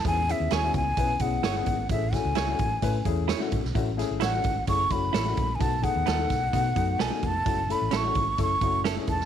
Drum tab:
HH |x-x-x-x-x-x-x-x-|x-x-x-x-x-x-x-x-|x-x-x-x-x-x-x-x-|x-x-x-x-x-x-x-x-|
SD |----o-------o---|--o-o-------o--o|--o-o-------o---|----o-o-----o---|
BD |o-----o-o-o---o-|o-o---o-o-o---o-|o-----o-o-o---o-|o-o---o-o-o---o-|

HH |x-x-x-x-x-x-x-x-|
SD |----o-------o--o|
BD |o-----o-o-o---o-|